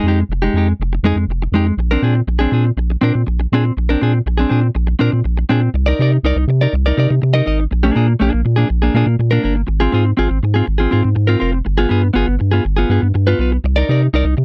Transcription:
0.03 F2 G#3
0.08 D#4 G4
0.20 muted clean electric guitar stroke
0.29 F1, muted clean electric guitar stroke
0.42 G#3 D#4 G4
0.54 F2 G#3 D#4
0.58 G4
0.69 muted clean electric guitar stroke
0.80 F1, muted clean electric guitar stroke
0.93 muted clean electric guitar stroke
1.03 F2 G#3 D#4 G#4
1.16 F2, muted clean electric guitar stroke
1.28 F1, muted clean electric guitar stroke
1.42 muted clean electric guitar stroke
1.52 F2 G#3 D#4 G4
1.67 muted clean electric guitar stroke
1.77 A#1, muted clean electric guitar stroke
1.91 C4 D4 A#4
2.02 A#2 C4 D4 G#4
2.15 muted clean electric guitar stroke
2.27 A#1, muted clean electric guitar stroke
2.39 C4 D4 G#4
2.51 A#2 C4 D4 G#4
2.65 muted clean electric guitar stroke
2.77 A#1, muted clean electric guitar stroke
2.90 muted clean electric guitar stroke
3.01 A#2 C4 D4 A#4
3.14 A#2, muted clean electric guitar stroke
3.27 A#1, muted clean electric guitar stroke
3.40 muted clean electric guitar stroke
3.52 A#2 C4 D4 G#4
3.65 muted clean electric guitar stroke
3.77 A#1, muted clean electric guitar stroke
3.89 C4 D4 A#4
4.01 A#2 C4 D4 G#4
4.14 muted clean electric guitar stroke
4.26 A#1, muted clean electric guitar stroke
4.38 C4 D4 G#4
4.49 A#2 C4 D4 G#4
4.61 muted clean electric guitar stroke
4.75 A#1, muted clean electric guitar stroke
4.87 muted clean electric guitar stroke
4.99 A#2 C4 D4 A#4
5.12 A#2, muted clean electric guitar stroke
5.24 A#1, muted clean electric guitar stroke
5.38 muted clean electric guitar stroke
5.49 A#2 C4 D4 G#4
5.61 muted clean electric guitar stroke
5.74 C2, muted clean electric guitar stroke
5.86 D#4 A#4 D5
5.99 C3 D#4 A#4 D5
6.12 muted clean electric guitar stroke
6.23 C2 D#4 A#4 D5
6.36 C2, muted clean electric guitar stroke
6.48 C3, muted clean electric guitar stroke
6.61 D#4 A#4 D5
6.73 C2, muted clean electric guitar stroke
6.86 D#4 A#4 D5
6.97 C3 D#4 A#4 D5
7.10 C3, muted clean electric guitar stroke
7.22 C3, muted clean electric guitar stroke
7.34 D#4 A#4 D#5
7.46 G#1 D#4 A#4 D#5
7.60 muted clean electric guitar stroke
7.71 A#1, muted clean electric guitar stroke
7.83 A#3 D4 G#4
7.95 A#2 A#3 D4 G#4
8.08 muted clean electric guitar stroke
8.20 A#1 A#3 D4 G#4
8.33 A#1, muted clean electric guitar stroke
8.45 A#2, muted clean electric guitar stroke
8.56 A#3 D4 G#4
8.68 A#1, muted clean electric guitar stroke
8.82 A#3 D4 G#4
8.94 A#2 A#3 D4 G#4
9.07 A#2, muted clean electric guitar stroke
9.19 A#2, muted clean electric guitar stroke
9.31 A#3 D4 A#4
9.43 G1 A#3 D4 A#4
9.55 muted clean electric guitar stroke
9.67 G#1, muted clean electric guitar stroke
9.80 C4 F4 G#4
9.92 G#2 C4 F4 G#4
10.05 muted clean electric guitar stroke
10.17 G#1 C4 F4 G#4
10.29 G#1, muted clean electric guitar stroke
10.43 G#2, muted clean electric guitar stroke
10.54 C4 F4 G#4
10.66 G#1, muted clean electric guitar stroke
10.78 C4 F4 G#4
10.91 G#2 C4 F4 G#4
11.03 G#2, muted clean electric guitar stroke
11.15 G#2, muted clean electric guitar stroke
11.27 C4 F4 A#4
11.39 F1 C4 F4 A#4
11.52 muted clean electric guitar stroke
11.65 G1, muted clean electric guitar stroke
11.78 B3 F4 G#4
11.89 G2 B3 F4 G#4
12.03 muted clean electric guitar stroke
12.13 G1 B3 F4 G#4
12.27 G1, muted clean electric guitar stroke
12.39 G2, muted clean electric guitar stroke
12.51 B3 F4 G#4
12.65 G1, muted clean electric guitar stroke
12.77 B3 F4 G#4
12.89 G2 B3 F4 G#4
13.02 G2, muted clean electric guitar stroke
13.14 G2, muted clean electric guitar stroke
13.27 B3 F4 B4
13.39 B1 B3 F4 B4
13.52 muted clean electric guitar stroke
13.64 C2, muted clean electric guitar stroke
13.76 D#4 A#4 D5
13.89 C3 D#4 A#4 D5
14.03 muted clean electric guitar stroke
14.13 C2 D#4 A#4 D5
14.25 C2, muted clean electric guitar stroke
14.37 C3, muted clean electric guitar stroke

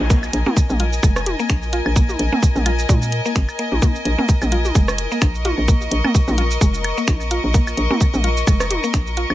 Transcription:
Already playing: A#4 D#5 G#5
0.00 A#1
0.10 A#3, kick, shaker
0.23 claves, shaker
0.33 A#1, closed hi-hat
0.46 A#3, mid tom, high tom
0.57 kick, shaker
0.70 A#1, mid tom, shaker
0.80 F4, closed hi-hat
0.93 shaker
1.03 F1 G#3, kick, claves, shaker
1.16 cross-stick, shaker
1.26 closed hi-hat, high tom
1.39 A#3, shaker
1.50 A#1, finger snap, kick, shaker
1.63 shaker
1.73 F4, closed hi-hat
1.86 A#1, claves
1.96 A#3, kick, shaker
2.09 high tom, shaker
2.19 A#1, closed hi-hat
2.32 A#3, mid tom
2.43 kick, shaker
2.55 A#1, mid tom, shaker
2.66 F4, closed hi-hat, claves
2.79 shaker
2.89 A#2 G#3, kick, high tom, shaker
3.02 shaker
3.12 closed hi-hat
3.25 A#3, shaker
3.36 G#1, finger snap, kick, shaker
3.49 claves, shaker
3.59 A#3, closed hi-hat
3.72 A#1, high tom
3.82 A#3, kick, high tom, shaker
3.95 shaker
4.05 A#1, closed hi-hat
4.18 A#3, mid tom
4.29 kick, shaker
4.42 A#1, mid tom, claves, shaker
4.52 F4, closed hi-hat
4.65 high tom, shaker
4.75 F1 G#3, kick, shaker
4.88 cross-stick, shaker
4.98 closed hi-hat
5.11 A#3, shaker
5.22 A#1, finger snap, kick, claves, shaker
5.35 C#6, shaker
5.45 F4, closed hi-hat, high tom
5.58 A#1
5.68 A#3, kick, shaker
5.81 shaker
5.91 A#1, closed hi-hat
6.04 A#3, mid tom, claves
6.15 kick, shaker
6.28 A#1, mid tom, high tom, shaker
6.38 F4, closed hi-hat
6.51 shaker
6.61 F1 G#3, kick, shaker
6.74 shaker
6.84 closed hi-hat, claves
6.97 A#3, shaker
7.08 A#1, finger snap, kick, high tom, shaker
7.21 shaker
7.31 F4, closed hi-hat
7.44 A#1
7.54 A#3, kick, shaker
7.67 claves, shaker
7.77 A#1, closed hi-hat
7.91 A#3, mid tom, high tom
8.01 kick, shaker
8.14 A#1, mid tom, shaker
8.24 F4, closed hi-hat
8.37 shaker
8.47 F1 G#3, kick, claves, shaker
8.60 cross-stick, shaker
8.71 closed hi-hat, high tom
8.84 A#3, shaker
8.94 A#1, finger snap, kick, shaker
9.07 shaker
9.17 F4, closed hi-hat
9.30 A#1, claves

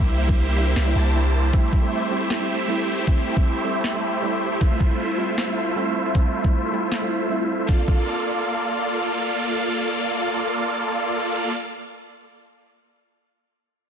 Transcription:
0.00 C2 G3 A#3 D4 E4 G4 C5 E5
0.28 G3 A#3 D4 E4, kick
0.56 G3 A#3 D4 E4
0.76 C2 A#3 E4 G4 C5 E5, snare
0.85 G3 A#3 D4 E4
0.96 C2 A#3 E4 G4 C5 A5
1.14 G3 A#3 D4 E4
1.52 G3 A3 C4 E4 G4 C5 E5, kick
1.73 kick
1.82 G3 A3 C4 E4
2.10 G3 A3 C4 E4
2.30 A3 E4 G4 C5 E5, snare
2.39 G3 A3 C4 E4
2.67 G3 A3 C4 E4
2.98 A3 E4 G4 C5 E5
3.06 G3 A3 C4 E4 G4, kick
3.35 G3 A3 C4 E4, kick
3.64 G3 A3 C4 E4
3.84 A3 E4 G4 C5 E5, snare
3.93 G3 A3 C4 E4
4.22 G3 A3 C4 E4
4.52 A3 E4 G4 C5 E5
4.60 G3 A3 C4 E4 F4 C5 E5, kick
4.80 kick
4.89 G3 A3 C4 E4
5.17 G3 A3 C4 E4
5.38 A3 E4 F4 C5 E5, snare
5.47 G3 A3 C4 E4
5.75 G3 A3 C4 E4
6.06 A3 E4 F4 C5 E5
6.14 G3 A3 C4 E4 F4 C5 E5, kick
6.43 G3 A3 C4 E4, kick
6.72 G3 A3 C4 E4
6.92 A3 E4 F4 C5 E5, snare
7.01 G3 A3 C4 E4
7.29 G3 A3 C4 E4
7.59 A3 E4 F4 C5 E5
7.66 A#3 C4 D4 F4 A4 D5 F5, kick
7.72 F4
7.85 A#3 C4 D4 F4 A4 D5 F5, kick
7.91 F4

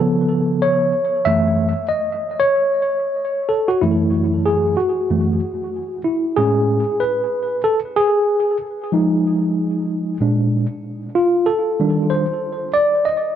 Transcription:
Already playing: A4
0.00 C#3 F3 B3
0.62 C#5
1.25 F#2 E3 A3 E5
1.89 D#5
2.40 C#5
3.49 A4
3.68 F#4
3.81 F#2 E3 A3 E4
4.46 G#4
4.77 F#4
5.10 F#2 E3 A3
6.04 E4
6.36 A2 G#3 C#4 G#4
7.00 B4
7.64 A4
7.96 G#4
8.92 F3 G#3 D#4
10.21 A#2 G#3 D4
11.15 F4
11.46 A4
11.80 D#3 G3 D4
12.10 C5
12.74 D5
13.05 D#5

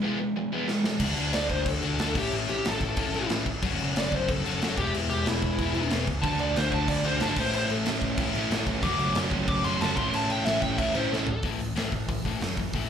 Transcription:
0.04 E3 G#3 B3
0.20 E3 G#3
0.36 E3 G#3
0.53 E3 G#3 B3
0.68 E3 G#3, snare
0.84 E3 G#3, snare
1.00 D2 D3 A3 D4, kick, crash
1.04 F#4
1.17 D2, crash
1.33 D2 D5, snare, crash
1.49 D2 C5, kick, crash
1.66 D2 A4, kick, crash
1.82 D2 A3 D4 F#4, crash
1.86 D3
1.99 D2 D3 A3 D4, snare, crash
2.03 F#4
2.15 A1 A2 E3 A3 C#4 E4 G4, kick, crash
2.32 A1, crash
2.49 A1 G4, crash
2.65 A1, snare, crash
2.69 A4
2.80 A1, kick, crash
2.97 A1 A2 E3 A3, kick, crash
3.01 C#4 E4
3.14 A1 E3 A3 C#4 E4, crash
3.18 A2
3.29 A1, snare, crash
3.46 A1, kick, crash
3.62 F#1 F#3 A3 C#4, kick, crash
3.67 F#4
3.79 F#1, crash
3.96 F#1 D5, snare, crash
4.11 F#1 C5, kick, crash
4.28 F#1 A4, kick, crash
4.45 F#1 A3 C#4 F#4, crash
4.50 F#3
4.62 F#1 F#3 A3 C#4 F#4, snare, crash
4.77 E1 E3 G#3 B3 G4, kick, crash
4.82 E4
4.94 E1, crash
5.10 E1 G4, crash
5.26 E1 E4, snare, crash
5.42 E1, kick, crash
5.58 E1 E3 G#3 B3, kick, crash
5.62 E4
5.75 E1 E3 G#3 B3 E4, crash
5.90 E1, snare, crash
6.07 C#2, kick, crash
6.22 D2 D3 A3 D4 A5, kick, crash
6.27 F#4
6.39 D2 D5, crash
6.56 D2 C5, snare, crash
6.71 D2 A3 D4 F#4 A5, kick, crash
6.75 D3
6.88 D2 D5, kick, crash
7.04 D2 A3 D4 F#4 C5, crash
7.08 D3
7.20 G#1 D3 A3 A5, snare, crash
7.24 D4 F#4
7.36 A1 A2 E3 A3 C#4 C5, kick, crash
7.41 E4
7.53 A1 C5, crash
7.70 A1 A4, crash
7.85 A1 A2 E3 A3 C#4, snare, crash
7.89 E4
8.02 A1, kick, crash
8.18 A1 A2 E3 A3, kick, crash
8.22 C#4 E4
8.35 A1 A2 E3 A3 C#4 E4, crash
8.51 A1, snare, crash
8.67 A1, kick, crash
8.83 F#1 F#3 A3 C#4 D6, kick, crash
8.87 F#4
8.98 F#1, crash
9.15 F#1, snare, crash
9.31 F#1 A3 C#4 F#4, kick, crash
9.36 F#3
9.48 F#1 D6, kick, crash
9.64 F#1 A3 C#4 F#4 C6, crash
9.68 F#3
9.81 F#1 F#3 A3 C#4 A5, snare, crash
9.85 F#4
9.96 A1 A2 E3 A3 C#4 C6, kick, crash
10.00 E4
10.14 A1 A5, crash
10.29 A1 G5, crash
10.45 A1 A2 E3 A3 C#4 E5, snare, crash
10.50 E4
10.62 A1 G5, kick, crash
10.78 A1 A2 E3 A3 C#4 E5, kick, crash
10.83 E4
10.94 A1 E3 A3 C#4 E4 C5, crash
10.99 A2
11.12 A1 A4, snare
11.27 A1, floor tom
11.31 A4
11.43 A1 A2 E3 A3, kick, open hi-hat
11.60 A1 A2 E3, open hi-hat
11.75 A1 A2 E3 A3, snare, open hi-hat
11.92 A1 A2 E3, kick, open hi-hat
12.08 A1 A2 E3, kick, open hi-hat
12.25 A2 E3 A3, kick, open hi-hat
12.41 F#2 A2 E3, snare, open hi-hat
12.57 A2 E3, kick, open hi-hat
12.73 A1 A2 E3 A3, kick, open hi-hat

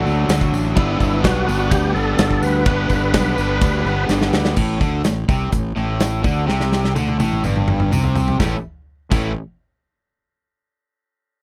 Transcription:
Already playing: D3 D4 F#4 A4
0.04 D2 F#3 A3 D4, tambourine
0.28 D2 D3 F#3 A3 D4, snare, ride bell, tambourine
0.41 kick
0.52 A1, tambourine
0.75 G1 G2 D3 G3 B3 D4 E4 B4, kick, ride bell, tambourine
1.00 G1 E4, kick, tambourine
1.23 B1 D3 G3 B3 D4 F#4, kick, snare, ride bell, tambourine
1.46 G1 G3 B3 D4 B4, tambourine
1.71 D2 G4, kick, ride bell, tambourine
1.93 G1 G3 B3 D4 A4, tambourine
2.18 G1 G2 D3 G3 B3 D4, snare, ride bell, tambourine
2.31 kick
2.42 D2 B4, tambourine
2.65 G1 G2 D3 G3 B3 D4 B4, kick, ride bell, tambourine
2.89 G1, kick, tambourine
3.13 B1 D3 G3 B3 D4, kick, snare, ride bell, tambourine
3.36 G1 G3 B3 D4 B4, tambourine
3.61 D2, kick, ride bell, tambourine
3.85 G1 G3 B3 D4, tambourine
4.09 G1 G2 D3 G3 B3 D4, snare, tambourine
4.21 snare
4.33 D2, snare, tambourine
4.45 snare
4.56 A1 A2, kick, crash
4.80 D2 D3, kick, tambourine
5.04 A1 A2, snare, closed hi-hat, tambourine
5.28 C2 C3, kick, tambourine
5.52 A1 A2, kick, closed hi-hat, tambourine
5.76 A1 A2, tambourine
6.00 snare, closed hi-hat, tambourine
6.24 D2 D3, kick, tambourine
6.47 C2 C3, snare
6.60 snare
6.72 snare, tambourine
6.84 snare
6.95 D2 D3, high tom, tambourine
7.08 high tom
7.19 A1 A2, high tom, tambourine
7.32 mid tom
7.43 G1 G2, mid tom, tambourine
7.56 mid tom
7.68 mid tom
7.80 mid tom
7.91 C2 C3, mid tom, tambourine
8.04 floor tom
8.15 floor tom, tambourine
8.28 floor tom
8.39 A1 A2 E3 A3 C#4 E4, kick, snare, tambourine
9.10 A1 A2 E3 A3 C#4 E4, kick, crash, tambourine

